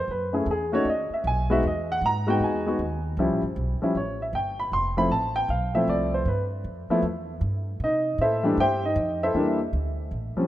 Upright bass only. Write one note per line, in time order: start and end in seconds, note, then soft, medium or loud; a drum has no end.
0.08 0.45 F#2 medium
0.46 0.84 E2 medium
0.85 1.08 D#2 medium
1.10 muted upright bass stroke soft
1.24 1.62 B1 medium
1.63 2.01 E2 medium
2.01 2.39 G#2 medium
2.40 2.78 E2 medium
2.79 3.16 D#2 medium
3.17 3.31 C#2 medium
3.31 3.42 A1 soft
3.43 3.55 G1 medium
3.56 3.79 B1 medium
3.80 muted upright bass stroke soft
3.95 4.32 A1 medium
4.33 4.71 G1 medium
4.72 5.09 F1 medium
5.10 5.48 A1 medium
5.48 5.86 B1 medium
5.88 6.25 C2 medium
6.25 6.63 G2 medium
6.64 6.87 F2 medium
6.89 muted upright bass stroke soft
7.02 7.40 E2 medium
7.41 7.79 G2 medium
7.80 8.18 C3 medium
8.18 8.56 A2 medium
8.57 8.95 G2 medium
8.96 9.33 F2 medium
9.34 9.72 E2 medium
9.73 10.11 D2 medium
10.11 10.34 A1 medium
10.36 muted upright bass stroke soft